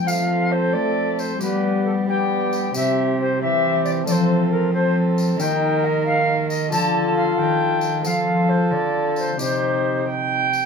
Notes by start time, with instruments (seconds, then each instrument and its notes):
0.04 harp F3 A3 C4 F4, viola A4, recorder F5
0.08 cello F3, trombone C4, tambourine
0.51 recorder C5
0.72 harp A3, cello A3, recorder D5
1.19 recorder C5, tambourine
1.38 harp G3 B3 D4, cello G3, trombone B3, viola G4, recorder B4, tambourine
1.85 recorder A4
2.06 harp B3 D4, trombone B3, viola G4, recorder G5
2.53 tambourine
2.73 cello C3, harp C3 C4 E4, trombone C4, viola G4, recorder E5, tambourine
3.19 recorder C5
3.40 cello E3, harp E3 C4 E4, trombone C4, viola G4, recorder E5
3.84 recorder D5, tambourine
4.04 harp F3 A3 C4 F4, trombone C4, viola A4, recorder D5, tambourine
4.08 cello F3, recorder C5
4.50 recorder A#4
4.73 trombone C4, viola A4, recorder C5
5.18 tambourine
5.36 harp D#3 A#3 D#4 G4, viola A#4, recorder G5, tambourine
5.40 cello D#3, trombone D#4
5.84 recorder D#5
6.05 recorder F5
6.48 recorder D#5, tambourine
6.68 harp F3 D4 F4, viola A4, recorder A5
6.72 cello D3, trombone F4, tambourine
7.16 recorder F5
7.38 harp D#3, cello D#3, recorder G5
7.81 tambourine
8.01 cello F3, harp F3 C4 F4 A4, viola A4, tambourine
8.05 trombone F4, recorder F5
8.48 recorder C5
8.71 cello D3, harp D3, recorder D5
9.16 recorder C5, tambourine
9.37 cello C3, harp C3 C4 D#4 G4, trombone D#4, viola G4, recorder C5, tambourine
10.08 viola G5
10.53 tambourine